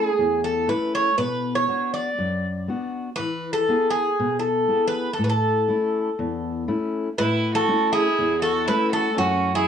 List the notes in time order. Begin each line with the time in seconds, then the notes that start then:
Already playing: G#4
0.19 E2
0.44 A4
0.68 A3 C#4 E4 B4
0.95 C#5
1.18 B2 B4
1.55 C#5
1.68 B3 D4 F#4
1.94 D5
2.18 F#2
2.68 B3 D4 F#4
3.16 E3 B4
3.53 A4
3.69 B3 E4 G#4
3.90 G#4
4.19 B2
4.39 A4
4.68 B3 E4 G#4
4.88 B4
5.13 A4
5.19 A2
5.24 B4
5.30 A4
5.68 A3 C#4 E4
6.19 E2
6.68 A3 C#4 E4
7.18 A2 E4 B4
7.55 F#4 A4
7.68 A3 C#4 E4
7.92 E4 G#4
8.19 E2
8.42 F#4 A4
8.68 A3 C#4 E4 B4
8.93 F#4 A4
9.17 F#2 C#4 F#4
9.55 E4 G#4